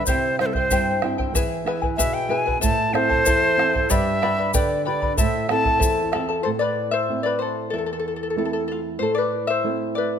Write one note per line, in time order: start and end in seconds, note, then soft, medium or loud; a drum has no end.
0.06 0.69 C3 medium
0.06 0.38 E4 medium
0.06 0.39 G4 medium
0.06 0.36 C5 medium
0.06 0.39 C5 medium
0.06 0.38 E5 medium
0.06 0.39 G5 medium
0.06 bombo low medium
0.06 shaker medium
0.39 0.90 G3 soft
0.39 0.91 C4 soft
0.39 0.55 E4 medium
0.39 0.91 E4 medium
0.39 0.55 C5 medium
0.39 0.48 C5 medium
0.39 0.55 E5 medium
0.39 0.55 G5 medium
0.39 bombo rim soft
0.46 0.55 A4 medium
0.53 0.70 E4 soft
0.53 1.03 C5 medium
0.53 0.71 C5 soft
0.53 0.71 G5 medium
0.53 bombo low medium
0.71 1.33 G2 medium
0.71 1.02 E4 medium
0.71 1.03 G4 medium
0.71 1.02 C5 medium
0.71 1.01 E5 medium
0.71 1.02 G5 medium
0.71 bombo low medium
0.71 shaker medium
1.02 1.28 G3 soft
1.02 1.28 C4 soft
1.02 1.18 E4 medium
1.02 1.29 E4 medium
1.02 1.18 C5 medium
1.02 1.18 E5 medium
1.02 1.17 G5 medium
1.02 bombo rim soft
1.18 1.34 E4 soft
1.18 1.35 C5 soft
1.18 1.34 G5 medium
1.18 bombo low soft
1.33 1.96 E3 medium
1.33 1.66 E4 medium
1.33 1.67 G#4 medium
1.33 1.66 B4 medium
1.33 1.65 E5 medium
1.33 1.67 G#5 medium
1.33 bombo low medium
1.33 shaker medium
1.65 2.17 B3 soft
1.65 2.17 E4 soft
1.65 1.82 E4 medium
1.65 2.17 G#4 medium
1.65 1.82 B4 medium
1.65 1.82 E5 medium
1.65 1.81 G#5 medium
1.65 bombo rim soft
1.82 1.98 E4 soft
1.82 1.97 B4 soft
1.82 1.98 G#5 medium
1.82 bombo low medium
1.97 2.60 B2 medium
1.97 2.29 E4 medium
1.97 2.30 G#4 medium
1.97 2.29 B4 medium
1.97 2.15 E5 medium
1.97 2.28 E5 medium
1.97 2.30 G#5 medium
1.97 bombo low medium
1.97 shaker loud
2.14 2.31 G5 medium
2.29 2.55 B3 soft
2.29 2.55 E4 soft
2.29 2.46 E4 medium
2.29 2.56 G#4 soft
2.29 2.45 B4 medium
2.29 2.46 E5 soft
2.29 2.61 G#5 medium
2.29 2.44 G#5 medium
2.46 2.60 E4 soft
2.46 2.61 B4 soft
2.46 2.61 G#5 soft
2.46 bombo low soft
2.61 3.24 A2 medium
2.61 2.92 E4 medium
2.61 2.93 A4 medium
2.61 2.94 C5 medium
2.61 2.92 E5 medium
2.61 2.93 A5 medium
2.61 2.96 A5 loud
2.61 bombo low medium
2.61 shaker loud
2.93 3.45 C4 medium
2.93 3.10 E4 medium
2.93 3.45 E4 soft
2.93 3.09 A4 medium
2.93 3.45 A4 soft
2.93 3.92 C5 loud
2.93 3.10 E5 soft
2.93 3.08 A5 medium
2.93 bombo rim soft
3.09 3.25 E4 soft
3.09 3.25 A4 soft
3.09 3.26 A5 soft
3.09 bombo low medium
3.26 3.88 E2 medium
3.26 3.58 E4 medium
3.26 3.58 A4 medium
3.26 3.58 C5 medium
3.26 3.58 E5 medium
3.26 3.58 A5 medium
3.26 bombo low medium
3.26 shaker loud
3.58 3.83 C4 soft
3.58 3.84 E4 soft
3.58 3.74 E4 medium
3.58 3.84 A4 soft
3.58 3.73 A4 medium
3.58 3.74 E5 medium
3.58 3.72 A5 medium
3.58 bombo rim soft
3.73 3.90 E4 soft
3.73 3.90 A4 soft
3.73 3.90 A5 soft
3.73 bombo low medium
3.90 4.52 G2 medium
3.90 4.22 G4 medium
3.90 4.21 B4 medium
3.90 4.21 D5 medium
3.90 4.54 E5 medium
3.90 4.21 G5 medium
3.90 4.22 B5 medium
3.90 bombo low medium
3.90 shaker medium
4.22 4.74 B3 soft
4.22 4.74 D4 soft
4.22 4.74 G4 soft
4.22 4.38 B4 medium
4.22 4.38 D5 medium
4.22 4.38 G5 medium
4.22 4.37 B5 medium
4.22 bombo rim soft
4.38 4.53 B4 soft
4.38 4.53 D5 medium
4.38 4.54 B5 medium
4.54 5.16 D3 medium
4.54 4.86 G4 medium
4.54 4.85 B4 medium
4.54 4.85 D5 medium
4.54 4.84 D5 medium
4.54 4.84 G5 medium
4.54 4.85 B5 medium
4.54 bombo low medium
4.54 shaker loud
4.85 5.12 B3 soft
4.85 5.12 D4 soft
4.85 5.12 G4 medium
4.85 5.02 B4 medium
4.85 5.01 D5 medium
4.85 5.16 D5 medium
4.85 5.01 G5 medium
4.85 5.01 B5 medium
5.02 5.17 B4 soft
5.02 5.18 D5 soft
5.02 5.18 B5 soft
5.02 bombo low medium
5.17 5.81 A2 medium
5.17 5.48 E4 medium
5.17 5.49 A4 medium
5.17 5.50 C5 medium
5.17 5.47 E5 medium
5.17 5.49 A5 medium
5.17 bombo low medium
5.17 shaker medium
5.49 6.01 C4 soft
5.49 5.65 E4 medium
5.49 6.01 E4 soft
5.49 5.65 A4 medium
5.49 6.02 A4 soft
5.49 5.65 E5 medium
5.49 5.64 A5 medium
5.49 6.10 A5 loud
5.49 bombo rim medium
5.65 5.79 E4 soft
5.65 5.79 A4 soft
5.65 5.79 A5 medium
5.65 bombo low medium
5.79 6.44 E2 medium
5.79 6.12 E4 medium
5.79 6.11 A4 medium
5.79 6.12 C5 medium
5.79 6.11 E5 medium
5.79 6.12 A5 medium
5.79 bombo low medium
5.79 shaker medium
6.12 6.40 C4 soft
6.12 6.29 E4 medium
6.12 6.40 E4 soft
6.12 6.43 F4 medium
6.12 6.28 A4 medium
6.12 6.40 A4 soft
6.12 6.29 E5 medium
6.12 6.27 A5 medium
6.12 bombo rim medium
6.29 6.46 E4 soft
6.29 6.44 A4 soft
6.29 6.45 A5 medium
6.43 7.69 A2 medium
6.43 6.50 A4 medium
6.43 6.48 C5 medium
6.59 6.91 B4 medium
6.59 6.93 D5 medium
6.91 7.23 C5 medium
6.91 7.25 E5 medium
7.09 7.71 A3 soft
7.09 7.71 C4 soft
7.09 7.71 E4 soft
7.23 7.40 B4 medium
7.23 7.41 D5 medium
7.39 7.69 A4 medium
7.39 7.70 C5 medium
7.70 8.97 E2 medium
7.70 7.80 E4 soft
7.70 7.77 A4 medium
7.78 7.85 A4 soft
7.86 7.92 A4 soft
7.93 7.98 A4 soft
7.99 8.06 A4 medium
8.08 8.15 A4 soft
8.16 8.22 A4 soft
8.23 8.29 A4 soft
8.30 8.37 A4 medium
8.36 8.98 A3 soft
8.36 8.99 C4 soft
8.36 8.99 E4 soft
8.36 8.44 A4 soft
8.45 8.52 A4 medium
8.53 8.62 A4 medium
8.68 8.80 F4 medium
8.68 8.77 A4 medium
8.99 10.19 A2 medium
8.99 9.17 A4 medium
8.99 9.14 C5 medium
9.15 9.47 B4 medium
9.15 9.49 D5 medium
9.47 9.94 C5 medium
9.47 9.97 E5 medium
9.64 10.19 A3 soft
9.64 10.19 C4 soft
9.64 10.19 E4 medium
9.95 10.19 B4 medium
9.95 10.19 D5 medium